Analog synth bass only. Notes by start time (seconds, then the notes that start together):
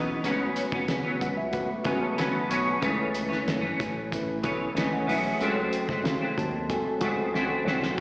Already playing: B1
0.24 C#2
0.72 C#2
0.88 C#3
1.21 C#2
1.85 C#2
2.49 B1
2.82 C#2
3.47 F#1
3.80 A1
4.44 B1
4.75 C#2
5.07 B1
5.41 C#2
5.89 C#2
6.04 C#3
6.38 D#2
7.01 C#2
7.65 C2